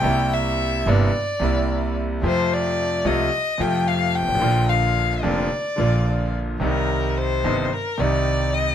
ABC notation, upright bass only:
X:1
M:4/4
L:1/16
Q:1/4=109
K:Cm
V:1 name="Upright bass" clef=bass
C,,4- C,,3/2 z/2 G,,,3/2 z2 z/2 C,,4- C,,3/2 z/2 | F,,4- F,,3/2 z/2 C,,3/2 z2 z/2 F,,4- F,,/2 G,,,/2 A,,,/2 =A,,,/2 | B,,,4- B,,,3/2 z/2 F,,,3/2 z2 z/2 B,,,4- B,,,3/2 z/2 | C,,4- C,,3/2 z/2 G,,,3/2 z2 z/2 C,,4- C,,3/2 z/2 |]